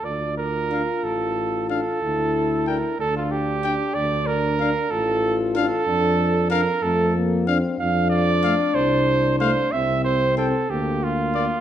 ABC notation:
X:1
M:6/8
L:1/16
Q:3/8=62
K:Dm
V:1 name="Trumpet"
z4 f z4 z f z | z4 g z4 z g z | z4 f z4 z f z | z4 f z4 z f z |
[K:F] z4 f z4 z f z | z4 g z4 z d z |]
V:2 name="Flugelhorn"
d2 B4 A4 A2- | A4 B2 A F G4 | d2 B4 A4 A2- | A4 B2 A2 z4 |
[K:F] f2 d4 c4 c2 | e2 c2 A2 G2 F4 |]
V:3 name="Euphonium"
z4 D z4 z D z | z4 D z4 z D z | z4 D z4 z D z | z4 D z4 z D z |
[K:F] z4 A, z4 z A, z | z4 C z4 z B, z |]
V:4 name="French horn"
F12 | E6 D6- | D6 F6 | D4 z2 A,2 B,2 C2 |
[K:F] D12 | C6 B,6 |]
V:5 name="Tuba" clef=bass
D,,6 A,,,6 | D,,6 D,,6 | D,,6 A,,,6 | F,,6 F,,6 |
[K:F] F,,6 C,,6 | C,,6 D,,6 |]